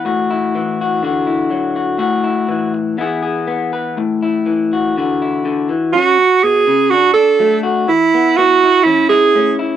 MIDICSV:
0, 0, Header, 1, 4, 480
1, 0, Start_track
1, 0, Key_signature, 3, "major"
1, 0, Tempo, 488599
1, 56, Time_signature, 4, 2, 24, 8
1, 9595, End_track
2, 0, Start_track
2, 0, Title_t, "Alto saxophone"
2, 0, Program_c, 0, 65
2, 5824, Note_on_c, 0, 66, 81
2, 6320, Note_on_c, 0, 68, 88
2, 6335, Note_off_c, 0, 66, 0
2, 6782, Note_on_c, 0, 66, 87
2, 6796, Note_off_c, 0, 68, 0
2, 7006, Note_off_c, 0, 66, 0
2, 7012, Note_on_c, 0, 69, 86
2, 7464, Note_off_c, 0, 69, 0
2, 7748, Note_on_c, 0, 64, 76
2, 8222, Note_on_c, 0, 66, 92
2, 8237, Note_off_c, 0, 64, 0
2, 8684, Note_on_c, 0, 64, 78
2, 8699, Note_off_c, 0, 66, 0
2, 8926, Note_off_c, 0, 64, 0
2, 8932, Note_on_c, 0, 68, 86
2, 9379, Note_off_c, 0, 68, 0
2, 9595, End_track
3, 0, Start_track
3, 0, Title_t, "Clean electric guitar"
3, 0, Program_c, 1, 27
3, 0, Note_on_c, 1, 52, 61
3, 49, Note_on_c, 1, 45, 63
3, 57, Note_on_c, 1, 66, 63
3, 299, Note_on_c, 1, 64, 59
3, 538, Note_off_c, 1, 52, 0
3, 541, Note_on_c, 1, 52, 62
3, 779, Note_off_c, 1, 66, 0
3, 800, Note_on_c, 1, 66, 54
3, 990, Note_off_c, 1, 45, 0
3, 1010, Note_on_c, 1, 50, 60
3, 1012, Note_off_c, 1, 66, 0
3, 1024, Note_on_c, 1, 66, 59
3, 1039, Note_off_c, 1, 64, 0
3, 1247, Note_on_c, 1, 64, 46
3, 1476, Note_off_c, 1, 52, 0
3, 1480, Note_on_c, 1, 54, 57
3, 1718, Note_off_c, 1, 66, 0
3, 1730, Note_on_c, 1, 66, 52
3, 1944, Note_off_c, 1, 66, 0
3, 1946, Note_off_c, 1, 54, 0
3, 1950, Note_on_c, 1, 45, 66
3, 1952, Note_off_c, 1, 50, 0
3, 1956, Note_on_c, 1, 66, 65
3, 1985, Note_off_c, 1, 64, 0
3, 2199, Note_on_c, 1, 64, 52
3, 2443, Note_on_c, 1, 52, 54
3, 2684, Note_off_c, 1, 66, 0
3, 2903, Note_off_c, 1, 45, 0
3, 2929, Note_on_c, 1, 59, 56
3, 2930, Note_off_c, 1, 52, 0
3, 2934, Note_on_c, 1, 52, 68
3, 2947, Note_off_c, 1, 64, 0
3, 2951, Note_on_c, 1, 64, 50
3, 2956, Note_on_c, 1, 68, 60
3, 3158, Note_off_c, 1, 68, 0
3, 3169, Note_on_c, 1, 68, 57
3, 3403, Note_off_c, 1, 59, 0
3, 3415, Note_on_c, 1, 59, 63
3, 3659, Note_off_c, 1, 68, 0
3, 3664, Note_on_c, 1, 71, 52
3, 3875, Note_off_c, 1, 59, 0
3, 3880, Note_off_c, 1, 71, 0
3, 3884, Note_off_c, 1, 64, 0
3, 3902, Note_on_c, 1, 45, 64
3, 4151, Note_on_c, 1, 64, 54
3, 4373, Note_off_c, 1, 52, 0
3, 4384, Note_on_c, 1, 52, 57
3, 4647, Note_on_c, 1, 66, 57
3, 4840, Note_off_c, 1, 45, 0
3, 4844, Note_off_c, 1, 64, 0
3, 4878, Note_off_c, 1, 66, 0
3, 4887, Note_on_c, 1, 50, 62
3, 4895, Note_on_c, 1, 66, 48
3, 5128, Note_on_c, 1, 64, 48
3, 5344, Note_off_c, 1, 50, 0
3, 5356, Note_on_c, 1, 50, 62
3, 5580, Note_off_c, 1, 52, 0
3, 5592, Note_off_c, 1, 50, 0
3, 5592, Note_on_c, 1, 52, 52
3, 5812, Note_off_c, 1, 64, 0
3, 5830, Note_off_c, 1, 52, 0
3, 5841, Note_on_c, 1, 42, 71
3, 5852, Note_on_c, 1, 61, 59
3, 6075, Note_off_c, 1, 61, 0
3, 6271, Note_off_c, 1, 42, 0
3, 6323, Note_on_c, 1, 47, 55
3, 6554, Note_off_c, 1, 47, 0
3, 6558, Note_on_c, 1, 49, 72
3, 6792, Note_off_c, 1, 49, 0
3, 6802, Note_on_c, 1, 50, 70
3, 6813, Note_on_c, 1, 62, 49
3, 7021, Note_off_c, 1, 62, 0
3, 7033, Note_on_c, 1, 62, 53
3, 7231, Note_off_c, 1, 50, 0
3, 7264, Note_on_c, 1, 54, 64
3, 7270, Note_on_c, 1, 57, 64
3, 7487, Note_off_c, 1, 66, 0
3, 7498, Note_on_c, 1, 66, 63
3, 7700, Note_off_c, 1, 54, 0
3, 7721, Note_off_c, 1, 62, 0
3, 7741, Note_off_c, 1, 66, 0
3, 7744, Note_off_c, 1, 57, 0
3, 7744, Note_on_c, 1, 52, 63
3, 7999, Note_on_c, 1, 59, 59
3, 8180, Note_off_c, 1, 52, 0
3, 8226, Note_off_c, 1, 59, 0
3, 8237, Note_on_c, 1, 59, 66
3, 8244, Note_on_c, 1, 64, 59
3, 8472, Note_off_c, 1, 64, 0
3, 8484, Note_on_c, 1, 64, 64
3, 8664, Note_off_c, 1, 59, 0
3, 8686, Note_off_c, 1, 64, 0
3, 8701, Note_on_c, 1, 52, 70
3, 8705, Note_on_c, 1, 61, 47
3, 8942, Note_on_c, 1, 64, 64
3, 9136, Note_off_c, 1, 52, 0
3, 9178, Note_off_c, 1, 61, 0
3, 9189, Note_on_c, 1, 57, 66
3, 9193, Note_on_c, 1, 61, 51
3, 9410, Note_off_c, 1, 64, 0
3, 9422, Note_on_c, 1, 64, 62
3, 9595, Note_off_c, 1, 57, 0
3, 9595, Note_off_c, 1, 61, 0
3, 9595, Note_off_c, 1, 64, 0
3, 9595, End_track
4, 0, Start_track
4, 0, Title_t, "Muted clean electric guitar strokes"
4, 2696, Note_on_c, 9, 29, 60
4, 2794, Note_off_c, 9, 29, 0
4, 3912, Note_on_c, 9, 29, 67
4, 4011, Note_off_c, 9, 29, 0
4, 6087, Note_on_c, 9, 29, 57
4, 6185, Note_off_c, 9, 29, 0
4, 7748, Note_on_c, 9, 29, 57
4, 7846, Note_off_c, 9, 29, 0
4, 9595, End_track
0, 0, End_of_file